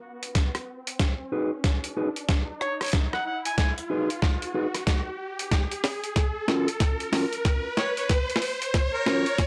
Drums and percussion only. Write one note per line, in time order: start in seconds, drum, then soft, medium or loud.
0.23 closed hi-hat medium
0.35 kick medium
0.35 snare medium
0.35 closed hi-hat medium
0.55 cross-stick medium
0.55 closed hi-hat soft
0.87 closed hi-hat medium
0.99 kick medium
0.99 snare medium
0.99 closed hi-hat medium
1.64 kick medium
1.64 snare medium
1.64 closed hi-hat medium
1.84 closed hi-hat soft
2.16 closed hi-hat medium
2.29 kick loud
2.29 snare medium
2.29 closed hi-hat medium
2.61 cross-stick medium
2.81 cross-stick soft
2.81 closed hi-hat soft
2.83 closed hi-hat soft
2.84 closed hi-hat soft
2.86 closed hi-hat soft
2.88 closed hi-hat soft
2.90 closed hi-hat soft
2.92 kick medium
2.92 snare medium
2.92 closed hi-hat soft
2.92 closed hi-hat medium
3.13 cross-stick soft
3.45 closed hi-hat soft
3.58 kick medium
3.58 snare medium
3.58 closed hi-hat medium
3.78 closed hi-hat soft
4.10 closed hi-hat medium
4.22 kick loud
4.22 snare medium
4.42 closed hi-hat soft
4.75 cross-stick soft
4.75 closed hi-hat medium
4.87 kick medium
4.87 snare medium
4.87 closed hi-hat medium
5.39 closed hi-hat medium
5.51 kick medium
5.51 snare medium
5.51 closed hi-hat medium
5.71 closed hi-hat soft
5.84 snare medium
5.84 open hi-hat medium
6.04 closed hi-hat soft
6.16 kick medium
6.16 snare medium
6.16 closed hi-hat medium
6.48 snare medium
6.68 closed hi-hat soft
6.80 kick loud
6.80 snare medium
6.80 closed hi-hat medium
7.00 closed hi-hat soft
7.13 snare medium
7.13 open hi-hat medium
7.33 closed hi-hat soft
7.45 kick loud
7.45 snare medium
7.45 closed hi-hat medium
7.77 snare medium
7.97 closed hi-hat medium
8.09 kick medium
8.09 snare medium
8.09 closed hi-hat medium
8.30 closed hi-hat soft
8.36 snare medium
8.42 open hi-hat medium
8.62 closed hi-hat soft
8.74 kick loud
8.74 snare medium
8.74 closed hi-hat medium
9.06 snare medium
9.26 closed hi-hat medium
9.38 kick loud
9.38 snare medium
9.38 closed hi-hat medium